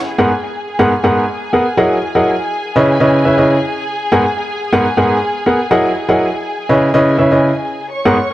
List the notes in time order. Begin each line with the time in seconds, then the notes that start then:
0.05 G#4 G#5
0.18 G#2 B3 G#4 A#4 F#5
0.79 G#2 B3 G#4 A#4 F#5
1.04 G#2 B3 G#4 A#4 F#5
1.53 B3 G#4 A#4 F#5
1.77 F#3 E4 G#4 A#4 D#5 F#5
2.15 F#3 E4 G#4 A#4 D#5 F#5
2.76 C#3 C#4 E4 B4 D#5
3.00 C#3 C#4 E4 B4 D#5
3.25 C#3 C#4 E4 B4 E5
3.38 C#3 C#4 E4 B4 D#5
4.12 G#2 B3 G#4 A#4 F#5
4.73 G#2 B3 G#4 A#4 F#5
4.97 G#2 B3 G#4 A#4 F#5
5.46 B3 G#4 A#4 F#5
5.71 F#3 E4 G#4 A#4 D#5 F#5
6.09 F#3 E4 G#4 A#4 D#5 F#5
6.69 C#3 C#4 E4 B4 D#5
6.94 C#3 C#4 E4 B4 D#5
7.18 C#3 C#4 E4 B4 E5
7.32 C#3 C#4 E4 B4 D#5
7.92 C#5 C#6
8.05 G#2 B3 G#4 A#4 F#5